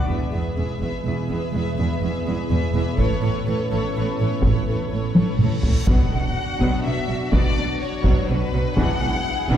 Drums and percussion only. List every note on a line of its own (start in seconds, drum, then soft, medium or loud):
0.08 taiko soft
0.81 taiko soft
2.98 taiko medium
4.42 taiko medium
5.15 taiko high medium
5.39 taiko mid medium
5.63 taiko low medium
5.87 taiko medium
6.60 taiko medium
7.32 taiko medium
8.04 taiko medium
8.77 taiko medium
9.49 taiko medium